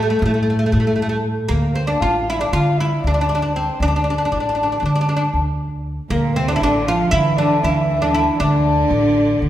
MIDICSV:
0, 0, Header, 1, 6, 480
1, 0, Start_track
1, 0, Tempo, 511073
1, 1408, Time_signature, 9, 3, 24, 8
1, 8917, End_track
2, 0, Start_track
2, 0, Title_t, "Kamancheh"
2, 0, Program_c, 0, 110
2, 1402, Note_on_c, 0, 70, 66
2, 1635, Note_on_c, 0, 72, 68
2, 1650, Note_off_c, 0, 70, 0
2, 1759, Note_on_c, 0, 74, 80
2, 1773, Note_off_c, 0, 72, 0
2, 1880, Note_on_c, 0, 77, 74
2, 1894, Note_off_c, 0, 74, 0
2, 2247, Note_on_c, 0, 74, 63
2, 2261, Note_off_c, 0, 77, 0
2, 2356, Note_off_c, 0, 74, 0
2, 2361, Note_on_c, 0, 77, 77
2, 2599, Note_on_c, 0, 76, 82
2, 2613, Note_off_c, 0, 77, 0
2, 2840, Note_off_c, 0, 76, 0
2, 2846, Note_on_c, 0, 74, 75
2, 3256, Note_off_c, 0, 74, 0
2, 3256, Note_on_c, 0, 74, 52
2, 3318, Note_on_c, 0, 72, 62
2, 3333, Note_off_c, 0, 74, 0
2, 3557, Note_on_c, 0, 74, 75
2, 3571, Note_off_c, 0, 72, 0
2, 5004, Note_off_c, 0, 74, 0
2, 5733, Note_on_c, 0, 70, 78
2, 5955, Note_off_c, 0, 70, 0
2, 5974, Note_on_c, 0, 72, 80
2, 6216, Note_on_c, 0, 74, 78
2, 6230, Note_off_c, 0, 72, 0
2, 6449, Note_on_c, 0, 77, 75
2, 6463, Note_off_c, 0, 74, 0
2, 6684, Note_on_c, 0, 76, 87
2, 6698, Note_off_c, 0, 77, 0
2, 6917, Note_on_c, 0, 74, 94
2, 6931, Note_off_c, 0, 76, 0
2, 7163, Note_off_c, 0, 74, 0
2, 7167, Note_on_c, 0, 76, 81
2, 7226, Note_on_c, 0, 77, 66
2, 7240, Note_off_c, 0, 76, 0
2, 7292, Note_on_c, 0, 76, 94
2, 7306, Note_off_c, 0, 77, 0
2, 7635, Note_off_c, 0, 76, 0
2, 7641, Note_on_c, 0, 76, 76
2, 7867, Note_off_c, 0, 76, 0
2, 7871, Note_on_c, 0, 74, 99
2, 8917, Note_off_c, 0, 74, 0
2, 8917, End_track
3, 0, Start_track
3, 0, Title_t, "Oud"
3, 0, Program_c, 1, 24
3, 24, Note_on_c, 1, 57, 60
3, 83, Note_off_c, 1, 57, 0
3, 95, Note_on_c, 1, 57, 60
3, 165, Note_off_c, 1, 57, 0
3, 179, Note_on_c, 1, 57, 45
3, 229, Note_off_c, 1, 57, 0
3, 241, Note_on_c, 1, 57, 65
3, 309, Note_off_c, 1, 57, 0
3, 319, Note_on_c, 1, 57, 47
3, 383, Note_off_c, 1, 57, 0
3, 400, Note_on_c, 1, 57, 51
3, 457, Note_off_c, 1, 57, 0
3, 468, Note_on_c, 1, 57, 44
3, 529, Note_off_c, 1, 57, 0
3, 554, Note_on_c, 1, 57, 55
3, 607, Note_off_c, 1, 57, 0
3, 621, Note_on_c, 1, 57, 51
3, 667, Note_off_c, 1, 57, 0
3, 678, Note_on_c, 1, 57, 56
3, 739, Note_off_c, 1, 57, 0
3, 749, Note_on_c, 1, 57, 47
3, 806, Note_off_c, 1, 57, 0
3, 817, Note_on_c, 1, 57, 55
3, 879, Note_off_c, 1, 57, 0
3, 898, Note_on_c, 1, 57, 47
3, 949, Note_off_c, 1, 57, 0
3, 960, Note_on_c, 1, 57, 62
3, 1015, Note_off_c, 1, 57, 0
3, 1026, Note_on_c, 1, 57, 57
3, 1089, Note_off_c, 1, 57, 0
3, 1394, Note_on_c, 1, 58, 93
3, 1648, Note_on_c, 1, 60, 75
3, 1649, Note_off_c, 1, 58, 0
3, 1755, Note_off_c, 1, 60, 0
3, 1759, Note_on_c, 1, 62, 72
3, 1887, Note_off_c, 1, 62, 0
3, 1898, Note_on_c, 1, 65, 85
3, 2141, Note_off_c, 1, 65, 0
3, 2157, Note_on_c, 1, 64, 87
3, 2257, Note_off_c, 1, 64, 0
3, 2261, Note_on_c, 1, 62, 70
3, 2374, Note_off_c, 1, 62, 0
3, 2377, Note_on_c, 1, 65, 99
3, 2620, Note_off_c, 1, 65, 0
3, 2633, Note_on_c, 1, 64, 81
3, 2868, Note_off_c, 1, 64, 0
3, 2885, Note_on_c, 1, 62, 79
3, 2939, Note_off_c, 1, 62, 0
3, 2950, Note_on_c, 1, 62, 56
3, 3007, Note_off_c, 1, 62, 0
3, 3016, Note_on_c, 1, 62, 62
3, 3075, Note_off_c, 1, 62, 0
3, 3091, Note_on_c, 1, 62, 57
3, 3133, Note_off_c, 1, 62, 0
3, 3144, Note_on_c, 1, 62, 71
3, 3203, Note_off_c, 1, 62, 0
3, 3214, Note_on_c, 1, 62, 58
3, 3280, Note_off_c, 1, 62, 0
3, 3344, Note_on_c, 1, 60, 73
3, 3584, Note_off_c, 1, 60, 0
3, 3593, Note_on_c, 1, 62, 87
3, 3631, Note_off_c, 1, 62, 0
3, 3642, Note_on_c, 1, 62, 56
3, 3707, Note_off_c, 1, 62, 0
3, 3720, Note_on_c, 1, 62, 56
3, 3781, Note_off_c, 1, 62, 0
3, 3794, Note_on_c, 1, 62, 53
3, 3841, Note_off_c, 1, 62, 0
3, 3853, Note_on_c, 1, 62, 61
3, 3917, Note_off_c, 1, 62, 0
3, 3928, Note_on_c, 1, 62, 52
3, 3982, Note_off_c, 1, 62, 0
3, 3993, Note_on_c, 1, 62, 52
3, 4045, Note_off_c, 1, 62, 0
3, 4056, Note_on_c, 1, 62, 52
3, 4124, Note_off_c, 1, 62, 0
3, 4135, Note_on_c, 1, 62, 46
3, 4199, Note_off_c, 1, 62, 0
3, 4217, Note_on_c, 1, 62, 51
3, 4262, Note_off_c, 1, 62, 0
3, 4273, Note_on_c, 1, 62, 49
3, 4338, Note_off_c, 1, 62, 0
3, 4348, Note_on_c, 1, 62, 49
3, 4411, Note_off_c, 1, 62, 0
3, 4435, Note_on_c, 1, 62, 47
3, 4490, Note_off_c, 1, 62, 0
3, 4507, Note_on_c, 1, 62, 43
3, 4550, Note_off_c, 1, 62, 0
3, 4561, Note_on_c, 1, 62, 61
3, 4623, Note_off_c, 1, 62, 0
3, 4653, Note_on_c, 1, 62, 59
3, 4694, Note_off_c, 1, 62, 0
3, 4705, Note_on_c, 1, 62, 61
3, 4765, Note_off_c, 1, 62, 0
3, 4778, Note_on_c, 1, 62, 56
3, 4837, Note_off_c, 1, 62, 0
3, 4851, Note_on_c, 1, 62, 62
3, 4909, Note_off_c, 1, 62, 0
3, 5733, Note_on_c, 1, 58, 88
3, 5975, Note_on_c, 1, 60, 89
3, 5978, Note_off_c, 1, 58, 0
3, 6085, Note_off_c, 1, 60, 0
3, 6089, Note_on_c, 1, 62, 86
3, 6156, Note_off_c, 1, 62, 0
3, 6159, Note_on_c, 1, 64, 76
3, 6223, Note_off_c, 1, 64, 0
3, 6231, Note_on_c, 1, 62, 98
3, 6461, Note_off_c, 1, 62, 0
3, 6465, Note_on_c, 1, 65, 97
3, 6676, Note_off_c, 1, 65, 0
3, 6679, Note_on_c, 1, 64, 110
3, 6907, Note_off_c, 1, 64, 0
3, 6935, Note_on_c, 1, 62, 86
3, 7175, Note_off_c, 1, 62, 0
3, 7179, Note_on_c, 1, 64, 86
3, 7527, Note_off_c, 1, 64, 0
3, 7531, Note_on_c, 1, 62, 86
3, 7646, Note_off_c, 1, 62, 0
3, 7649, Note_on_c, 1, 64, 83
3, 7884, Note_off_c, 1, 64, 0
3, 7888, Note_on_c, 1, 62, 92
3, 8917, Note_off_c, 1, 62, 0
3, 8917, End_track
4, 0, Start_track
4, 0, Title_t, "Cello"
4, 0, Program_c, 2, 42
4, 5727, Note_on_c, 2, 46, 79
4, 5969, Note_on_c, 2, 48, 79
4, 5983, Note_off_c, 2, 46, 0
4, 6101, Note_on_c, 2, 50, 84
4, 6115, Note_off_c, 2, 48, 0
4, 6219, Note_off_c, 2, 50, 0
4, 6225, Note_on_c, 2, 50, 80
4, 6454, Note_on_c, 2, 53, 90
4, 6468, Note_off_c, 2, 50, 0
4, 6630, Note_off_c, 2, 53, 0
4, 6630, Note_on_c, 2, 53, 58
4, 6695, Note_on_c, 2, 52, 87
4, 6709, Note_off_c, 2, 53, 0
4, 6947, Note_on_c, 2, 50, 82
4, 6961, Note_off_c, 2, 52, 0
4, 7169, Note_on_c, 2, 52, 84
4, 7183, Note_off_c, 2, 50, 0
4, 7523, Note_on_c, 2, 50, 93
4, 7538, Note_off_c, 2, 52, 0
4, 7812, Note_off_c, 2, 50, 0
4, 7818, Note_on_c, 2, 52, 55
4, 7886, Note_on_c, 2, 50, 93
4, 7900, Note_off_c, 2, 52, 0
4, 8917, Note_off_c, 2, 50, 0
4, 8917, End_track
5, 0, Start_track
5, 0, Title_t, "Cello section"
5, 0, Program_c, 3, 48
5, 0, Note_on_c, 3, 45, 71
5, 1461, Note_off_c, 3, 45, 0
5, 8917, End_track
6, 0, Start_track
6, 0, Title_t, "Upright bass"
6, 0, Program_c, 4, 32
6, 0, Note_on_c, 4, 45, 81
6, 131, Note_off_c, 4, 45, 0
6, 207, Note_on_c, 4, 45, 109
6, 609, Note_off_c, 4, 45, 0
6, 685, Note_on_c, 4, 45, 93
6, 1290, Note_off_c, 4, 45, 0
6, 1403, Note_on_c, 4, 38, 84
6, 1808, Note_off_c, 4, 38, 0
6, 1889, Note_on_c, 4, 33, 72
6, 2292, Note_off_c, 4, 33, 0
6, 2373, Note_on_c, 4, 50, 88
6, 2774, Note_off_c, 4, 50, 0
6, 2854, Note_on_c, 4, 38, 80
6, 3457, Note_off_c, 4, 38, 0
6, 3569, Note_on_c, 4, 38, 82
6, 3973, Note_off_c, 4, 38, 0
6, 4055, Note_on_c, 4, 33, 78
6, 4456, Note_off_c, 4, 33, 0
6, 4532, Note_on_c, 4, 50, 86
6, 4934, Note_off_c, 4, 50, 0
6, 5011, Note_on_c, 4, 38, 77
6, 5614, Note_off_c, 4, 38, 0
6, 5732, Note_on_c, 4, 38, 94
6, 6134, Note_off_c, 4, 38, 0
6, 6210, Note_on_c, 4, 33, 82
6, 6612, Note_off_c, 4, 33, 0
6, 6690, Note_on_c, 4, 50, 86
6, 7092, Note_off_c, 4, 50, 0
6, 7170, Note_on_c, 4, 38, 91
6, 7772, Note_off_c, 4, 38, 0
6, 7888, Note_on_c, 4, 38, 101
6, 8290, Note_off_c, 4, 38, 0
6, 8362, Note_on_c, 4, 33, 86
6, 8766, Note_off_c, 4, 33, 0
6, 8846, Note_on_c, 4, 50, 83
6, 8917, Note_off_c, 4, 50, 0
6, 8917, End_track
0, 0, End_of_file